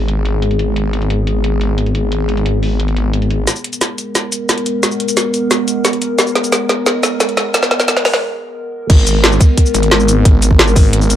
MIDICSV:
0, 0, Header, 1, 4, 480
1, 0, Start_track
1, 0, Key_signature, 5, "minor"
1, 0, Tempo, 338983
1, 1079, Time_signature, 4, 2, 24, 8
1, 15804, End_track
2, 0, Start_track
2, 0, Title_t, "Analog synth pad"
2, 0, Program_c, 0, 89
2, 0, Note_on_c, 0, 56, 78
2, 0, Note_on_c, 0, 59, 74
2, 0, Note_on_c, 0, 68, 92
2, 4863, Note_off_c, 0, 56, 0
2, 4863, Note_off_c, 0, 59, 0
2, 4886, Note_off_c, 0, 68, 0
2, 4918, Note_on_c, 0, 56, 78
2, 4919, Note_on_c, 0, 59, 72
2, 4919, Note_on_c, 0, 70, 89
2, 12542, Note_off_c, 0, 56, 0
2, 12542, Note_off_c, 0, 59, 0
2, 12542, Note_off_c, 0, 70, 0
2, 12600, Note_on_c, 0, 59, 75
2, 12601, Note_on_c, 0, 56, 83
2, 12601, Note_on_c, 0, 70, 89
2, 15804, Note_off_c, 0, 56, 0
2, 15804, Note_off_c, 0, 59, 0
2, 15804, Note_off_c, 0, 70, 0
2, 15804, End_track
3, 0, Start_track
3, 0, Title_t, "Detuned saw bass"
3, 0, Program_c, 1, 39
3, 0, Note_on_c, 1, 32, 91
3, 4895, Note_off_c, 1, 32, 0
3, 12598, Note_on_c, 1, 32, 102
3, 13299, Note_off_c, 1, 32, 0
3, 13798, Note_on_c, 1, 32, 99
3, 14499, Note_off_c, 1, 32, 0
3, 14517, Note_on_c, 1, 32, 96
3, 15219, Note_off_c, 1, 32, 0
3, 15237, Note_on_c, 1, 32, 97
3, 15699, Note_off_c, 1, 32, 0
3, 15718, Note_on_c, 1, 32, 101
3, 15804, Note_off_c, 1, 32, 0
3, 15804, End_track
4, 0, Start_track
4, 0, Title_t, "Drums"
4, 119, Note_on_c, 9, 42, 85
4, 261, Note_off_c, 9, 42, 0
4, 360, Note_on_c, 9, 42, 63
4, 501, Note_off_c, 9, 42, 0
4, 599, Note_on_c, 9, 42, 85
4, 720, Note_off_c, 9, 42, 0
4, 720, Note_on_c, 9, 42, 33
4, 840, Note_off_c, 9, 42, 0
4, 840, Note_on_c, 9, 42, 62
4, 981, Note_off_c, 9, 42, 0
4, 1080, Note_on_c, 9, 42, 87
4, 1222, Note_off_c, 9, 42, 0
4, 1321, Note_on_c, 9, 42, 61
4, 1440, Note_off_c, 9, 42, 0
4, 1440, Note_on_c, 9, 42, 33
4, 1560, Note_off_c, 9, 42, 0
4, 1560, Note_on_c, 9, 42, 83
4, 1702, Note_off_c, 9, 42, 0
4, 1800, Note_on_c, 9, 42, 63
4, 1941, Note_off_c, 9, 42, 0
4, 2040, Note_on_c, 9, 42, 90
4, 2181, Note_off_c, 9, 42, 0
4, 2279, Note_on_c, 9, 42, 61
4, 2421, Note_off_c, 9, 42, 0
4, 2519, Note_on_c, 9, 42, 85
4, 2640, Note_off_c, 9, 42, 0
4, 2640, Note_on_c, 9, 42, 34
4, 2759, Note_off_c, 9, 42, 0
4, 2759, Note_on_c, 9, 42, 62
4, 2901, Note_off_c, 9, 42, 0
4, 2999, Note_on_c, 9, 42, 92
4, 3141, Note_off_c, 9, 42, 0
4, 3239, Note_on_c, 9, 42, 61
4, 3359, Note_off_c, 9, 42, 0
4, 3359, Note_on_c, 9, 42, 36
4, 3480, Note_off_c, 9, 42, 0
4, 3480, Note_on_c, 9, 42, 88
4, 3621, Note_off_c, 9, 42, 0
4, 3720, Note_on_c, 9, 46, 78
4, 3861, Note_off_c, 9, 46, 0
4, 3960, Note_on_c, 9, 42, 91
4, 4080, Note_off_c, 9, 42, 0
4, 4080, Note_on_c, 9, 42, 35
4, 4199, Note_off_c, 9, 42, 0
4, 4199, Note_on_c, 9, 42, 65
4, 4341, Note_off_c, 9, 42, 0
4, 4439, Note_on_c, 9, 42, 93
4, 4560, Note_off_c, 9, 42, 0
4, 4560, Note_on_c, 9, 42, 36
4, 4680, Note_off_c, 9, 42, 0
4, 4680, Note_on_c, 9, 42, 62
4, 4821, Note_off_c, 9, 42, 0
4, 4919, Note_on_c, 9, 38, 47
4, 4919, Note_on_c, 9, 42, 98
4, 4919, Note_on_c, 9, 69, 51
4, 5040, Note_off_c, 9, 69, 0
4, 5040, Note_on_c, 9, 69, 29
4, 5061, Note_off_c, 9, 38, 0
4, 5061, Note_off_c, 9, 42, 0
4, 5159, Note_on_c, 9, 42, 67
4, 5181, Note_off_c, 9, 69, 0
4, 5279, Note_off_c, 9, 42, 0
4, 5279, Note_on_c, 9, 42, 37
4, 5279, Note_on_c, 9, 69, 58
4, 5399, Note_off_c, 9, 42, 0
4, 5399, Note_off_c, 9, 69, 0
4, 5399, Note_on_c, 9, 38, 47
4, 5399, Note_on_c, 9, 42, 94
4, 5399, Note_on_c, 9, 69, 49
4, 5541, Note_off_c, 9, 38, 0
4, 5541, Note_off_c, 9, 42, 0
4, 5541, Note_off_c, 9, 69, 0
4, 5639, Note_on_c, 9, 42, 67
4, 5639, Note_on_c, 9, 69, 27
4, 5781, Note_off_c, 9, 42, 0
4, 5781, Note_off_c, 9, 69, 0
4, 5880, Note_on_c, 9, 38, 53
4, 5880, Note_on_c, 9, 42, 92
4, 5880, Note_on_c, 9, 69, 54
4, 6021, Note_off_c, 9, 38, 0
4, 6021, Note_off_c, 9, 42, 0
4, 6021, Note_off_c, 9, 69, 0
4, 6120, Note_on_c, 9, 42, 65
4, 6120, Note_on_c, 9, 69, 61
4, 6261, Note_off_c, 9, 42, 0
4, 6261, Note_off_c, 9, 69, 0
4, 6359, Note_on_c, 9, 38, 59
4, 6359, Note_on_c, 9, 42, 94
4, 6359, Note_on_c, 9, 69, 51
4, 6480, Note_off_c, 9, 42, 0
4, 6480, Note_on_c, 9, 42, 35
4, 6501, Note_off_c, 9, 38, 0
4, 6501, Note_off_c, 9, 69, 0
4, 6600, Note_off_c, 9, 42, 0
4, 6600, Note_on_c, 9, 42, 68
4, 6600, Note_on_c, 9, 69, 27
4, 6742, Note_off_c, 9, 42, 0
4, 6742, Note_off_c, 9, 69, 0
4, 6840, Note_on_c, 9, 38, 61
4, 6840, Note_on_c, 9, 42, 97
4, 6840, Note_on_c, 9, 69, 51
4, 6960, Note_off_c, 9, 69, 0
4, 6960, Note_on_c, 9, 69, 27
4, 6982, Note_off_c, 9, 38, 0
4, 6982, Note_off_c, 9, 42, 0
4, 7080, Note_on_c, 9, 42, 67
4, 7101, Note_off_c, 9, 69, 0
4, 7200, Note_off_c, 9, 42, 0
4, 7200, Note_on_c, 9, 42, 37
4, 7200, Note_on_c, 9, 69, 60
4, 7319, Note_off_c, 9, 42, 0
4, 7319, Note_off_c, 9, 69, 0
4, 7319, Note_on_c, 9, 38, 63
4, 7319, Note_on_c, 9, 42, 96
4, 7319, Note_on_c, 9, 69, 47
4, 7461, Note_off_c, 9, 38, 0
4, 7461, Note_off_c, 9, 42, 0
4, 7461, Note_off_c, 9, 69, 0
4, 7559, Note_on_c, 9, 42, 68
4, 7559, Note_on_c, 9, 69, 28
4, 7701, Note_off_c, 9, 42, 0
4, 7701, Note_off_c, 9, 69, 0
4, 7800, Note_on_c, 9, 38, 68
4, 7800, Note_on_c, 9, 42, 97
4, 7800, Note_on_c, 9, 69, 50
4, 7941, Note_off_c, 9, 38, 0
4, 7941, Note_off_c, 9, 42, 0
4, 7941, Note_off_c, 9, 69, 0
4, 8039, Note_on_c, 9, 42, 70
4, 8039, Note_on_c, 9, 69, 57
4, 8181, Note_off_c, 9, 42, 0
4, 8181, Note_off_c, 9, 69, 0
4, 8279, Note_on_c, 9, 38, 69
4, 8279, Note_on_c, 9, 42, 98
4, 8279, Note_on_c, 9, 69, 52
4, 8398, Note_off_c, 9, 42, 0
4, 8398, Note_on_c, 9, 42, 37
4, 8420, Note_off_c, 9, 38, 0
4, 8420, Note_off_c, 9, 69, 0
4, 8519, Note_off_c, 9, 42, 0
4, 8519, Note_on_c, 9, 42, 71
4, 8519, Note_on_c, 9, 69, 27
4, 8661, Note_off_c, 9, 42, 0
4, 8661, Note_off_c, 9, 69, 0
4, 8759, Note_on_c, 9, 38, 75
4, 8759, Note_on_c, 9, 42, 99
4, 8759, Note_on_c, 9, 69, 48
4, 8879, Note_off_c, 9, 69, 0
4, 8879, Note_on_c, 9, 69, 27
4, 8900, Note_off_c, 9, 38, 0
4, 8900, Note_off_c, 9, 42, 0
4, 8999, Note_on_c, 9, 38, 74
4, 8999, Note_on_c, 9, 42, 67
4, 9020, Note_off_c, 9, 69, 0
4, 9119, Note_off_c, 9, 42, 0
4, 9119, Note_on_c, 9, 42, 36
4, 9119, Note_on_c, 9, 69, 57
4, 9140, Note_off_c, 9, 38, 0
4, 9238, Note_off_c, 9, 42, 0
4, 9238, Note_off_c, 9, 69, 0
4, 9238, Note_on_c, 9, 38, 76
4, 9238, Note_on_c, 9, 42, 97
4, 9238, Note_on_c, 9, 69, 47
4, 9380, Note_off_c, 9, 38, 0
4, 9380, Note_off_c, 9, 42, 0
4, 9380, Note_off_c, 9, 69, 0
4, 9478, Note_on_c, 9, 38, 80
4, 9478, Note_on_c, 9, 42, 66
4, 9478, Note_on_c, 9, 69, 26
4, 9620, Note_off_c, 9, 38, 0
4, 9620, Note_off_c, 9, 42, 0
4, 9620, Note_off_c, 9, 69, 0
4, 9719, Note_on_c, 9, 38, 88
4, 9719, Note_on_c, 9, 42, 94
4, 9719, Note_on_c, 9, 69, 49
4, 9861, Note_off_c, 9, 38, 0
4, 9861, Note_off_c, 9, 42, 0
4, 9861, Note_off_c, 9, 69, 0
4, 9959, Note_on_c, 9, 38, 89
4, 9959, Note_on_c, 9, 42, 66
4, 9959, Note_on_c, 9, 69, 56
4, 10100, Note_off_c, 9, 38, 0
4, 10100, Note_off_c, 9, 42, 0
4, 10100, Note_off_c, 9, 69, 0
4, 10199, Note_on_c, 9, 38, 90
4, 10199, Note_on_c, 9, 42, 97
4, 10199, Note_on_c, 9, 69, 50
4, 10319, Note_off_c, 9, 42, 0
4, 10319, Note_on_c, 9, 42, 35
4, 10341, Note_off_c, 9, 38, 0
4, 10341, Note_off_c, 9, 69, 0
4, 10439, Note_off_c, 9, 42, 0
4, 10439, Note_on_c, 9, 38, 91
4, 10439, Note_on_c, 9, 42, 68
4, 10439, Note_on_c, 9, 69, 28
4, 10580, Note_off_c, 9, 38, 0
4, 10580, Note_off_c, 9, 42, 0
4, 10580, Note_off_c, 9, 69, 0
4, 10679, Note_on_c, 9, 38, 98
4, 10679, Note_on_c, 9, 42, 93
4, 10679, Note_on_c, 9, 69, 48
4, 10799, Note_off_c, 9, 38, 0
4, 10799, Note_off_c, 9, 69, 0
4, 10799, Note_on_c, 9, 38, 83
4, 10799, Note_on_c, 9, 69, 27
4, 10821, Note_off_c, 9, 42, 0
4, 10918, Note_off_c, 9, 38, 0
4, 10918, Note_on_c, 9, 38, 93
4, 10918, Note_on_c, 9, 42, 65
4, 10940, Note_off_c, 9, 69, 0
4, 11039, Note_off_c, 9, 38, 0
4, 11039, Note_off_c, 9, 42, 0
4, 11039, Note_on_c, 9, 38, 84
4, 11039, Note_on_c, 9, 42, 36
4, 11039, Note_on_c, 9, 69, 55
4, 11159, Note_off_c, 9, 38, 0
4, 11159, Note_off_c, 9, 42, 0
4, 11159, Note_off_c, 9, 69, 0
4, 11159, Note_on_c, 9, 38, 95
4, 11159, Note_on_c, 9, 42, 85
4, 11159, Note_on_c, 9, 69, 46
4, 11280, Note_off_c, 9, 38, 0
4, 11280, Note_on_c, 9, 38, 90
4, 11301, Note_off_c, 9, 42, 0
4, 11301, Note_off_c, 9, 69, 0
4, 11400, Note_off_c, 9, 38, 0
4, 11400, Note_on_c, 9, 38, 105
4, 11400, Note_on_c, 9, 46, 76
4, 11400, Note_on_c, 9, 69, 27
4, 11519, Note_off_c, 9, 38, 0
4, 11519, Note_on_c, 9, 38, 88
4, 11542, Note_off_c, 9, 46, 0
4, 11542, Note_off_c, 9, 69, 0
4, 11661, Note_off_c, 9, 38, 0
4, 12598, Note_on_c, 9, 36, 127
4, 12599, Note_on_c, 9, 42, 96
4, 12599, Note_on_c, 9, 49, 107
4, 12740, Note_off_c, 9, 36, 0
4, 12741, Note_off_c, 9, 42, 0
4, 12741, Note_off_c, 9, 49, 0
4, 12840, Note_on_c, 9, 42, 66
4, 12840, Note_on_c, 9, 69, 62
4, 12981, Note_off_c, 9, 42, 0
4, 12981, Note_off_c, 9, 69, 0
4, 13079, Note_on_c, 9, 38, 118
4, 13079, Note_on_c, 9, 42, 96
4, 13200, Note_on_c, 9, 69, 31
4, 13220, Note_off_c, 9, 38, 0
4, 13220, Note_off_c, 9, 42, 0
4, 13318, Note_on_c, 9, 36, 106
4, 13319, Note_off_c, 9, 69, 0
4, 13319, Note_on_c, 9, 42, 66
4, 13319, Note_on_c, 9, 69, 62
4, 13460, Note_off_c, 9, 36, 0
4, 13461, Note_off_c, 9, 42, 0
4, 13461, Note_off_c, 9, 69, 0
4, 13558, Note_on_c, 9, 36, 61
4, 13558, Note_on_c, 9, 42, 99
4, 13679, Note_on_c, 9, 69, 28
4, 13700, Note_off_c, 9, 36, 0
4, 13700, Note_off_c, 9, 42, 0
4, 13798, Note_off_c, 9, 69, 0
4, 13798, Note_on_c, 9, 42, 70
4, 13798, Note_on_c, 9, 69, 63
4, 13918, Note_off_c, 9, 42, 0
4, 13918, Note_on_c, 9, 42, 41
4, 13940, Note_off_c, 9, 69, 0
4, 14039, Note_off_c, 9, 42, 0
4, 14039, Note_on_c, 9, 38, 120
4, 14039, Note_on_c, 9, 42, 95
4, 14159, Note_on_c, 9, 69, 28
4, 14180, Note_off_c, 9, 38, 0
4, 14180, Note_off_c, 9, 42, 0
4, 14279, Note_off_c, 9, 69, 0
4, 14279, Note_on_c, 9, 42, 69
4, 14279, Note_on_c, 9, 69, 61
4, 14420, Note_off_c, 9, 42, 0
4, 14420, Note_off_c, 9, 69, 0
4, 14518, Note_on_c, 9, 36, 126
4, 14519, Note_on_c, 9, 42, 101
4, 14659, Note_off_c, 9, 36, 0
4, 14661, Note_off_c, 9, 42, 0
4, 14758, Note_on_c, 9, 42, 68
4, 14758, Note_on_c, 9, 69, 60
4, 14878, Note_on_c, 9, 36, 63
4, 14900, Note_off_c, 9, 42, 0
4, 14900, Note_off_c, 9, 69, 0
4, 14998, Note_on_c, 9, 38, 122
4, 14998, Note_on_c, 9, 42, 100
4, 15019, Note_off_c, 9, 36, 0
4, 15119, Note_on_c, 9, 69, 28
4, 15140, Note_off_c, 9, 38, 0
4, 15140, Note_off_c, 9, 42, 0
4, 15238, Note_off_c, 9, 69, 0
4, 15238, Note_on_c, 9, 36, 108
4, 15238, Note_on_c, 9, 46, 76
4, 15238, Note_on_c, 9, 69, 61
4, 15379, Note_off_c, 9, 36, 0
4, 15380, Note_off_c, 9, 46, 0
4, 15380, Note_off_c, 9, 69, 0
4, 15478, Note_on_c, 9, 42, 96
4, 15598, Note_on_c, 9, 69, 28
4, 15620, Note_off_c, 9, 42, 0
4, 15718, Note_off_c, 9, 69, 0
4, 15718, Note_on_c, 9, 42, 69
4, 15718, Note_on_c, 9, 69, 63
4, 15804, Note_off_c, 9, 42, 0
4, 15804, Note_off_c, 9, 69, 0
4, 15804, End_track
0, 0, End_of_file